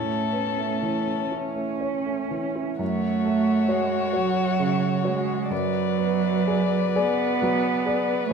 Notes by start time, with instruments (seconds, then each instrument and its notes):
Already playing: grand piano A2, cello A3, violin C#4 A4
0.08 grand piano A3
0.33 grand piano B3
0.58 grand piano A3
0.82 grand piano E3
1.07 grand piano A3
1.32 cello C#4, grand piano E4
1.56 grand piano A3
1.81 grand piano C#5
2.06 grand piano A3
2.31 grand piano E3
2.56 grand piano E4
2.79 grand piano F#2, cello A3, violin F#4 C#5
3.25 grand piano A3
3.68 cello G#3, grand piano F#4 C#5
4.13 cello F#3, grand piano F#4 C#5
4.60 grand piano C#3
5.04 cello G#3, grand piano F#4 C#5
5.50 grand piano F#2, cello F#3, violin B4 D5
5.98 grand piano B3
6.47 grand piano G#4 D5
6.96 cello B3, grand piano G#4 D5
7.42 grand piano F#3
7.86 grand piano G#4 D5
8.25 cello A3